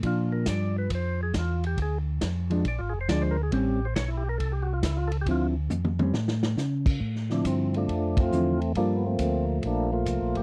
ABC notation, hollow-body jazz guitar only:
X:1
M:4/4
L:1/8
Q:"Swing" 1/4=138
K:Dm
V:1 name="Hollow-body jazz guitar"
[F,D]4- [F,D] z3 | z3 [F,_A,D] z2 [F,A,D] z | [G,^B,^C] z6 z | [D,F,CE] z2 [G,C^C] z4 |
z [D,F,CE]3 z2 [D,F,CE] z | [G,B,FA] z6 z |]